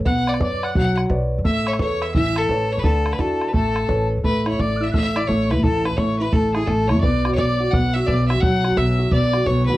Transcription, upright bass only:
X:1
M:4/4
L:1/16
Q:"Swing" 1/4=172
K:A
V:1 name="Upright bass" clef=bass
B,,,4 F,,4 B,,,4 B,,,3 F,, | A,,,4 E,,4 A,,,4 A,,,3 E,, | D,,4 E,,4 A,,,4 A,,,3 E,, | A,,,4 A,,,4 A,,,4 A,,,3 E,, |
A,,,4 A,,,4 A,,,4 A,,,3 F,, | B,,,4 B,,,4 B,,,4 B,,,3 F,, | B,,,4 B,,,4 B,,,4 B,,,3 z |]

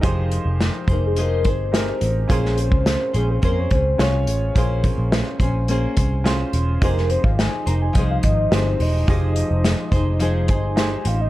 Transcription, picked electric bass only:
X:1
M:4/4
L:1/16
Q:1/4=106
K:Fm
V:1 name="Picked electric bass" clef=bass
F,,,3 F,,,2 z F,,,4 G,,,4 =A,,,2 | B,,,3 D,,2 z B,,,2 F,,2 D,,2 C,,2 =A,,,2 | B,,,3 B,,,2 z B,,,4 C,,4 =E,,,2 | F,,,3 A,,,2 z F,,,2 C,,2 A,,,2 G,,,2 =E,,,2 |
F,,,3 F,,,2 z F,,,4 G,,,4 =A,,,2 |]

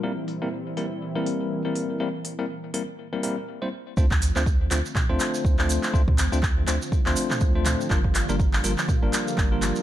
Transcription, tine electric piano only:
X:1
M:4/4
L:1/16
Q:"Swing 16ths" 1/4=122
K:Dm
V:1 name="Tine electric piano"
[G,B,CEB] z2 [G,B,CEB] z2 [G,B,CEB] z2 [G,B,CEB]4 [G,B,CEB]3 | [G,B,CEB] z2 [G,B,CEB] z2 [G,B,CEB] z2 [G,B,CEB] [G,B,CEB] z2 [G,B,CEc] z2 | [A,CDFc] z2 [A,CDFc] z2 [A,CDFc] z2 [A,CDFc]4 [A,CDFc]3 | [A,CDFc] z2 [A,CDFc] z2 [A,CDFc] z2 [A,CDFc]4 [A,CDFc]3 |
[G,B,DFB] z2 [G,B,DFB] z2 [G,B,DFB] z2 [G,B,DFB]4 [G,B,DFB]3 |]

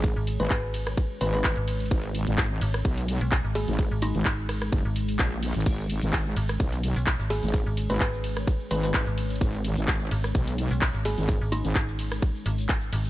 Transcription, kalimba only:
X:1
M:4/4
L:1/16
Q:"Swing 16ths" 1/4=128
K:G#m
V:1 name="Kalimba"
z3 B B z4 z B B z4 | z12 z2 G2 | z2 D3 z8 z3 | z12 z2 G2 |
z3 B B z4 z B B z4 | z12 z2 G2 | z2 D3 z8 z3 |]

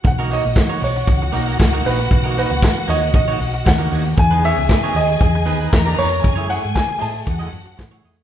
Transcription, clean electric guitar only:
X:1
M:4/4
L:1/16
Q:"Swing 16ths" 1/4=116
K:B
V:1 name="Clean electric guitar"
z [A,DFA] [A,DFc] z2 [A,DFc]2 z3 [A,DFA] [A,DFA] z [A,DFA] [A,DFA] z | z [A,DFA] [A,DFA] z3 [A,DFc]2 z [A,DFc]2 z2 [A,DFA] [A,DFc] z | z [B,DGB] [B,DGc] z2 [B,DGc]2 z3 [B,DGB] [B,DGB] z [B,DGB] [B,DGB] z | z [=A,EGc] [A,EGc] z3 [A,EGd]2 z [A,EGd]2 z2 [A,EGc] [A,EGd] z |]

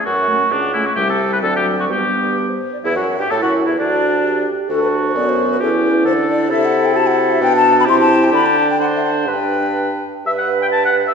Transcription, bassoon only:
X:1
M:2/4
L:1/16
Q:1/4=130
K:F#m
V:1 name="Bassoon" clef=bass
F,,4 C,,4 | [K:G] C,,4 D,,4 | G,,6 z2 | E,, F,,2 G,, A,, F,,2 E,, |
D,,6 z2 | D,,4 F,,4 | E,,4 D,4 | C,8 |
B,,4 C,4 | D,8 | G,,6 z2 | G,,8 |]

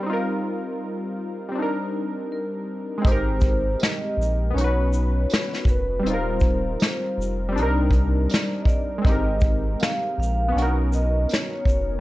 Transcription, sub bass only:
X:1
M:4/4
L:1/8
Q:"Swing 16ths" 1/4=80
K:Ablyd
V:1 name="Sub bass" clef=bass
z8 | A,,,2 z B,,, =B,,,2 z F,,, | E,,,2 z F,,, C,, C,, z2 | A,,,2 z B,,, =B,,,2 z F,,, |]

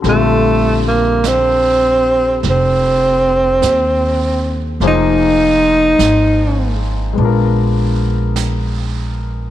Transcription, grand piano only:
X:1
M:4/4
L:1/8
Q:"Swing" 1/4=51
K:Bb
V:1 name="Grand piano"
[D,G,CFA]8 | [F,B,E_Ac]4 [_A,_CDFB]4 |]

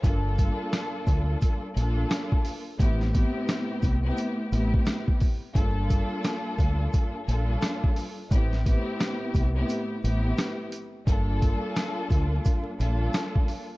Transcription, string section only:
X:1
M:4/4
L:1/16
Q:"Swing 16ths" 1/4=87
K:Gdor
V:1 name="String section"
[G,,B,DFA]8- [G,,B,DFA] z [G,,B,DFA]4- [G,,B,DFA] z | [A,,=B,CEG]2 [A,,B,CEG]4- [A,,B,CEG] [A,,B,CEG]3 [A,,B,CEG]4 z2 | [G,,B,DFA]8- [G,,B,DFA] z [G,,B,DFA]4- [G,,B,DFA] z | [A,,=B,CEG]2 [A,,B,CEG]4- [A,,B,CEG] [A,,B,CEG]3 [A,,B,CEG]4 z2 |
[G,,B,DFA]8- [G,,B,DFA] z [G,,B,DFA]4- [G,,B,DFA] z |]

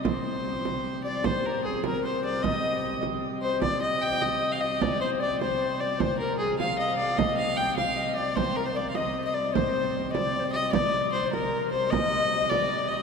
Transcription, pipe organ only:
X:1
M:6/8
L:1/8
Q:3/8=101
K:Cm
V:1 name="Pipe organ" clef=bass
[C,G,]6 | [C,G,]6- | [C,G,]6- | [C,G,]6- |
[C,G,]6 | [C,G,]6- | [C,G,]6- | [C,G,]6- |
[C,G,]6 | [C,G,]6- | [C,G,]6 |]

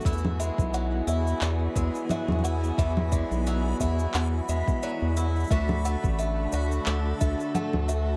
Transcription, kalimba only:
X:1
M:4/4
L:1/8
Q:"Swing 16ths" 1/4=88
K:Emix
V:1 name="Kalimba"
e' e f e d e' e f | e d e' e f e d e' | e f e d e' e f e |]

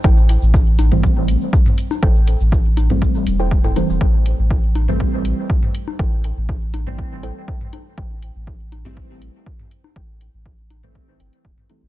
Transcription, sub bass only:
X:1
M:4/4
L:1/16
Q:1/4=121
K:Am
V:1 name="Sub bass" clef=bass
A,,,3 A,,,8 z4 z | A,,,3 A,,,6- A,,, E,,,4- E,,, E,,, | A,,,3 A,,,8 z4 z | A,,,3 A,,,8 z4 z |
A,,,3 A,,,8 z4 z | A,,,3 A,,,6- A,,, G,,, z E,,, z2 A,,, |]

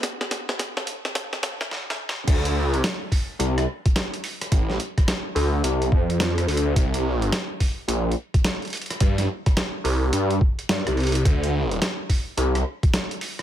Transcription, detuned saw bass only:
X:1
M:4/4
L:1/16
Q:"Swing 16ths" 1/4=107
K:Dphr
V:1 name="Detuned saw bass" clef=bass
z16 | D,,4 z4 C,,2 z6 | A,,,2 z4 D,,2 C,,2 F,,2 F,,2 D,,2 | C,,4 z4 B,,,2 z6 |
G,,2 z4 C,,2 G,,2 z2 G,, C,,3 | D,,4 z4 C,,2 z6 |]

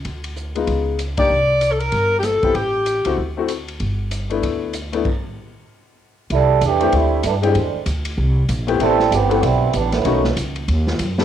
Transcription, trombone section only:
X:1
M:4/4
L:1/8
Q:"Swing" 1/4=192
K:G
V:1 name="Trombone section"
z8 | z8 | z8 | z8 |
z8 | [K:C] [G,DEA]2 [E,A,DG]2 [G,A,DE]2 [E,G,A,D] [D,G,_A,C]- | [D,G,_A,C]2 z6 | [G,CEA]2 [E,B,CG]2 [G,B,CE]2 [E,G,B,D] [_E,^F,A,B,]- |
[_E,^F,A,B,]2 z6 |]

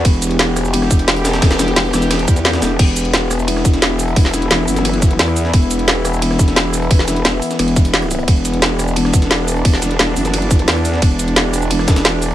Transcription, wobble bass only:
X:1
M:4/4
L:1/8
Q:1/4=175
K:Em
V:1 name="Wobble bass" clef=bass
E,,,8 | E,,,2 E,,, E,,,2 E,,2 E,,, | E,,,8 | E,,,2 E,,, F,,,3 E,,2 |
E,,,8 | E,,,2 E,,, z E,,,4 | E,,,8 | E,,,2 E,,, F,,,3 E,,2 |
E,,,8 |]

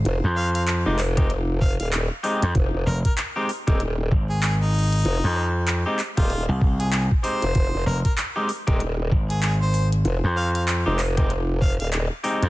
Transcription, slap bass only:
X:1
M:4/4
L:1/16
Q:"Swing 16ths" 1/4=96
K:Fm
V:1 name="Slap bass" clef=bass
z F,,4 z8 z2 F,, | z2 F,,, z6 z A,,,6 | z F,,4 z4 C,,4 z3 | z2 F,,, z6 z A,,,6 |
z F,,4 z8 z2 F,, |]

